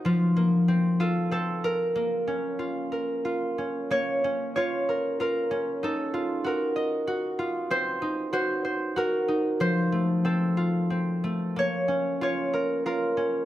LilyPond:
\new Staff \with { instrumentName = "Harp" } { \time 3/4 \key bes \minor \tempo 4 = 94 << { f'4. a'8 a'8 bes'8~ | bes'2 r4 | des''4 des''4 bes'4 | a'4 bes'4. r8 |
c''4 c''4 bes'4 | c''4 a'4. r8 | des''4 des''4 bes'4 | } \\ { f8 bes8 c'8 f'8 c'4 | bes8 des'8 f'8 bes'8 f'8 des'8 | bes8 des'8 f'8 bes'8 f'8 des'8 | ees'8 f'8 ges'8 ees''8 ges'8 f'8 |
c'8 ees'8 ges'8 c''8 ges'8 ees'8 | f8 a8 c'8 f'8 c'8 a8 | bes8 des'8 f'8 bes'8 f'8 des'8 | } >> }